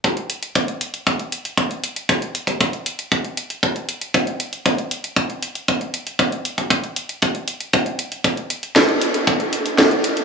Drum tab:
HH |xxxxxxxxxxxxxxxx|xxxxxxxxxxxxxxxx|xxxxxxxxxxxxxxxx|xxxxxxxxxxxxxxxx|
SD |----------------|----------------|----------------|----------------|
BD |o---o---o---o---|o--oo---o---o---|o---o---o---o---|o--oo---o---o---|

HH |xxxxxxxxxxxxxxxx|
SD |----o-------o---|
BD |o---o---o---o---|